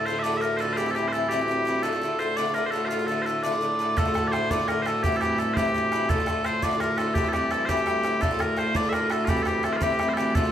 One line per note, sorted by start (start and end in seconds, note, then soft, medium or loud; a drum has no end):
0.00 3.96 D2 medium
0.00 3.96 A2 medium
0.06 0.23 A2 medium
0.06 0.24 D3 medium
0.06 0.25 A3 medium
0.06 0.19 C5 medium
0.10 0.25 F4 medium
0.19 0.37 D5 medium
0.19 0.23 E5 medium
0.24 0.33 A2 medium
0.24 0.34 D3 medium
0.24 0.32 A3 medium
0.24 0.31 F4 medium
0.32 0.41 D3 soft
0.32 0.42 A3 soft
0.32 0.42 F4 soft
0.37 0.41 E5 medium
0.41 0.57 A2 soft
0.41 0.59 D3 soft
0.41 0.60 A3 medium
0.41 0.61 F4 medium
0.41 0.57 A#4 medium
0.57 0.77 A2 medium
0.57 0.78 D3 medium
0.57 0.73 A4 medium
0.57 0.60 C5 medium
0.61 0.79 A3 medium
0.61 0.79 F4 medium
0.73 0.77 C5 medium
0.77 0.86 G2 medium
0.77 0.87 E3 medium
0.77 0.87 C4 medium
0.77 0.85 E4 medium
0.77 0.91 G4 medium
0.86 0.95 E3 soft
0.86 0.96 C4 soft
0.86 0.95 E4 medium
0.91 1.11 G2 soft
0.91 0.95 A4 medium
0.95 1.13 E3 medium
0.95 1.14 C4 soft
0.95 1.15 E4 medium
0.95 1.08 G4 medium
1.08 1.12 C5 medium
1.12 1.30 G2 soft
1.12 1.31 E3 soft
1.12 1.31 C4 medium
1.12 1.32 E4 medium
1.12 1.29 A4 medium
1.29 1.40 G2 medium
1.29 1.40 E3 medium
1.29 1.40 C4 medium
1.29 1.83 G4 medium
1.33 1.38 E4 medium
1.39 1.48 E3 soft
1.39 1.50 C4 soft
1.39 1.48 E4 soft
1.48 1.64 G2 soft
1.48 1.66 E3 soft
1.48 1.67 C4 medium
1.48 1.68 E4 medium
1.65 1.83 G2 medium
1.65 1.84 E3 medium
1.65 1.85 C4 medium
1.65 1.85 E4 medium
1.83 1.93 A2 medium
1.83 1.93 D3 medium
1.83 1.93 A3 medium
1.83 1.91 F4 medium
1.83 2.19 A4 medium
1.93 2.02 D3 soft
1.93 2.03 A3 soft
1.93 2.02 F4 soft
2.02 2.18 A2 medium
2.02 2.19 D3 medium
2.02 2.21 A3 medium
2.02 2.21 F4 medium
2.19 2.36 A2 soft
2.19 2.37 D3 medium
2.19 2.37 A3 medium
2.19 2.38 F4 medium
2.19 2.36 C5 medium
2.36 2.46 A2 medium
2.36 2.47 D3 medium
2.36 2.46 A3 medium
2.36 2.44 F4 medium
2.36 2.54 D5 medium
2.46 2.55 D3 soft
2.46 2.55 A3 soft
2.46 2.55 F4 soft
2.54 2.71 A2 medium
2.54 2.72 D3 medium
2.54 2.74 A3 medium
2.54 2.74 F4 medium
2.54 2.66 A#4 medium
2.66 2.71 C5 medium
2.71 2.89 A2 medium
2.71 2.90 D3 medium
2.71 2.85 A4 medium
2.75 2.91 A3 medium
2.75 2.91 F4 medium
2.85 3.07 F4 medium
2.85 2.88 C5 medium
2.90 2.99 A2 medium
2.90 3.00 D3 medium
2.90 2.99 A3 medium
2.90 2.98 F4 medium
2.99 3.08 D3 soft
2.99 3.09 A3 soft
2.99 3.08 F4 medium
3.07 3.25 A2 medium
3.07 3.26 D3 medium
3.07 3.27 A3 soft
3.07 3.22 A4 medium
3.12 3.28 F4 medium
3.22 3.43 A4 medium
3.22 3.26 C5 medium
3.26 3.42 A2 soft
3.26 3.43 D3 medium
3.26 3.44 A3 medium
3.26 3.45 F4 medium
3.43 3.53 A2 medium
3.43 3.53 D3 medium
3.43 3.52 A3 medium
3.43 3.51 F4 medium
3.43 3.97 D5 medium
3.52 3.61 D3 soft
3.52 3.62 A3 soft
3.52 3.61 F4 soft
3.61 3.78 A2 soft
3.61 3.79 D3 medium
3.61 3.80 A3 medium
3.61 3.81 F4 soft
3.79 3.95 A2 medium
3.79 3.96 D3 medium
3.79 3.97 A3 medium
3.79 3.98 F4 medium
3.97 8.21 D2 medium
3.97 4.06 A2 medium
3.97 8.21 A2 medium
3.97 4.06 D3 medium
3.97 4.06 A3 medium
3.97 4.04 F4 medium
3.97 4.27 A4 medium
3.97 bodhran medium
4.05 4.14 D3 soft
4.05 4.15 A3 soft
4.05 4.15 F4 medium
4.05 bodhran soft
4.14 4.32 A2 medium
4.14 4.33 D3 medium
4.14 4.33 A3 medium
4.14 4.34 F4 medium
4.14 bodhran medium
4.27 4.32 D5 medium
4.32 4.50 A2 medium
4.32 4.51 D3 soft
4.32 4.51 A3 soft
4.32 4.50 C5 medium
4.32 bodhran medium
4.36 4.52 F4 medium
4.50 4.59 A2 medium
4.50 4.60 D3 medium
4.50 4.60 A3 medium
4.50 4.58 F4 medium
4.50 4.68 D5 medium
4.50 bodhran medium
4.60 4.68 D3 soft
4.60 4.69 A3 soft
4.60 4.68 F4 soft
4.68 4.84 A2 soft
4.68 4.86 D3 medium
4.68 4.87 A3 medium
4.68 4.87 F4 medium
4.68 4.82 A#4 medium
4.68 bodhran medium
4.82 5.03 A2 medium
4.82 5.03 A4 medium
4.82 4.86 C5 medium
4.86 5.04 D3 medium
4.86 5.05 A3 medium
4.86 5.05 F4 medium
4.86 bodhran soft
5.03 5.12 G2 medium
5.03 5.13 E3 medium
5.03 5.13 C4 medium
5.03 5.11 E4 medium
5.03 5.17 G4 medium
5.03 bodhran medium
5.12 5.21 E3 soft
5.12 5.22 C4 soft
5.12 5.21 E4 medium
5.17 5.21 A4 medium
5.21 5.37 G2 medium
5.21 5.38 E3 medium
5.21 5.40 C4 medium
5.21 5.41 E4 medium
5.21 5.39 G4 medium
5.21 bodhran medium
5.38 5.56 G2 medium
5.38 5.57 E3 medium
5.38 5.58 C4 medium
5.38 5.58 E4 medium
5.38 5.53 A4 medium
5.53 5.66 G2 medium
5.53 6.10 G4 medium
5.53 5.57 C5 medium
5.53 bodhran medium
5.58 5.66 E3 medium
5.58 5.66 C4 medium
5.58 5.64 E4 medium
5.65 5.74 E3 soft
5.65 5.75 C4 soft
5.65 5.74 E4 soft
5.76 5.92 E3 medium
5.76 5.93 C4 medium
5.76 5.94 E4 medium
5.92 6.09 G2 medium
5.92 6.10 E3 medium
5.92 6.10 C4 medium
5.92 6.11 E4 medium
5.92 bodhran soft
6.09 6.18 A2 medium
6.09 6.19 D3 medium
6.09 6.19 A3 medium
6.09 6.17 F4 medium
6.09 6.45 A4 medium
6.09 bodhran medium
6.18 6.27 D3 soft
6.18 6.28 A3 soft
6.18 6.27 F4 medium
6.18 bodhran soft
6.26 6.43 A2 medium
6.26 6.45 D3 medium
6.26 6.46 A3 medium
6.26 6.46 F4 medium
6.26 bodhran medium
6.44 6.61 A2 medium
6.44 6.62 D3 medium
6.44 6.63 A3 medium
6.44 6.63 F4 medium
6.44 6.63 C5 medium
6.44 bodhran soft
6.62 6.71 A2 medium
6.62 6.72 D3 medium
6.62 6.72 A3 medium
6.62 6.70 F4 medium
6.62 6.80 D5 medium
6.62 bodhran medium
6.71 6.80 D3 soft
6.71 6.81 A3 soft
6.71 6.80 F4 soft
6.80 6.96 A2 medium
6.80 6.98 D3 soft
6.80 6.99 A3 medium
6.80 7.00 F4 medium
6.80 6.97 A#4 medium
6.80 bodhran soft
6.97 7.15 A2 medium
6.97 7.16 D3 medium
6.97 7.17 A3 medium
6.97 7.17 F4 medium
6.97 7.15 A4 medium
6.97 bodhran soft
7.15 7.24 G2 medium
7.15 7.25 E3 medium
7.15 7.25 C4 medium
7.15 7.23 E4 medium
7.15 7.29 G4 medium
7.15 bodhran medium
7.24 7.33 E3 soft
7.24 7.34 C4 soft
7.24 7.33 E4 medium
7.24 bodhran soft
7.29 7.51 G4 medium
7.29 7.33 A4 medium
7.33 7.49 G2 medium
7.33 7.51 E3 medium
7.33 7.52 C4 medium
7.33 7.53 E4 medium
7.33 bodhran medium
7.51 7.68 G2 medium
7.51 7.68 E3 medium
7.51 7.69 C4 medium
7.51 7.70 E4 medium
7.51 7.65 A4 medium
7.51 bodhran soft
7.65 7.78 G2 medium
7.65 7.78 E3 medium
7.65 8.22 G4 medium
7.65 7.69 C5 medium
7.65 bodhran medium
7.70 7.77 C4 medium
7.70 7.76 E4 medium
7.77 7.86 E3 soft
7.77 7.87 C4 soft
7.77 7.86 E4 medium
7.86 8.02 G2 medium
7.86 8.03 E3 medium
7.86 8.05 C4 medium
7.86 8.06 E4 medium
7.86 bodhran medium
8.03 8.20 G2 medium
8.03 8.21 E3 medium
8.03 8.22 C4 medium
8.03 8.23 E4 medium
8.03 bodhran soft
8.21 10.52 D2 medium
8.21 8.30 A2 medium
8.21 10.52 A2 medium
8.21 8.31 D3 medium
8.21 8.31 A3 medium
8.21 8.30 F4 medium
8.21 8.40 A4 medium
8.21 bodhran medium
8.31 8.39 D3 soft
8.31 8.40 A3 soft
8.31 8.40 F4 medium
8.31 bodhran soft
8.39 8.55 A2 medium
8.39 8.57 D3 medium
8.39 8.58 A3 medium
8.39 8.59 F4 medium
8.39 8.58 A#4 medium
8.39 bodhran medium
8.57 8.73 A2 soft
8.57 8.75 D3 medium
8.57 8.75 A3 soft
8.57 8.76 F4 medium
8.57 8.76 C5 medium
8.57 bodhran medium
8.75 8.84 A2 medium
8.75 8.84 D3 medium
8.75 8.84 A3 medium
8.75 8.82 F4 medium
8.75 8.89 D5 loud
8.75 bodhran medium
8.83 8.93 D3 soft
8.83 8.94 A3 soft
8.83 8.93 F4 soft
8.89 9.08 A2 soft
8.89 8.93 E5 medium
8.89 bodhran medium
8.93 9.10 D3 medium
8.93 9.11 A3 medium
8.93 9.12 F4 medium
8.93 9.11 A#4 medium
9.09 9.27 A2 medium
9.09 9.28 D3 medium
9.09 9.29 A3 medium
9.09 9.29 F4 medium
9.09 9.25 A4 medium
9.09 bodhran medium
9.25 9.37 G2 medium
9.25 9.37 E3 medium
9.25 9.37 C4 medium
9.25 9.29 F4 medium
9.25 9.43 G4 medium
9.25 bodhran medium
9.30 9.35 E4 medium
9.37 9.45 E3 soft
9.37 9.47 C4 soft
9.37 9.46 E4 soft
9.37 bodhran soft
9.43 9.62 G2 medium
9.43 9.63 E3 medium
9.43 9.47 A4 medium
9.43 bodhran medium
9.47 9.64 C4 medium
9.47 9.65 E4 medium
9.47 9.64 G4 medium
9.63 9.79 G2 medium
9.63 9.80 E3 medium
9.63 9.81 C4 medium
9.63 9.82 E4 medium
9.63 9.73 A4 medium
9.63 bodhran medium
9.73 9.77 C5 medium
9.77 9.83 F4 medium
9.81 9.90 G2 medium
9.81 9.90 E3 medium
9.81 9.91 C4 medium
9.81 9.89 E4 medium
9.81 10.09 G4 medium
9.81 bodhran medium
9.90 9.99 E3 soft
9.90 10.00 C4 soft
9.90 9.99 E4 soft
9.99 10.16 G2 medium
9.99 10.17 E3 medium
9.99 10.18 C4 medium
9.99 10.19 E4 medium
9.99 bodhran medium
10.09 10.13 C5 medium
10.13 10.35 G2 medium
10.13 10.18 A4 medium
10.13 bodhran medium
10.18 10.35 E3 medium
10.18 10.36 C4 medium
10.18 10.36 E4 medium
10.18 10.35 G4 medium
10.35 10.44 A2 medium
10.35 10.44 D3 medium
10.35 10.44 A3 medium
10.35 10.42 F4 medium
10.35 10.52 A4 medium
10.35 bodhran medium
10.43 10.52 D3 soft
10.43 10.52 A3 medium
10.43 10.52 F4 medium
10.43 bodhran soft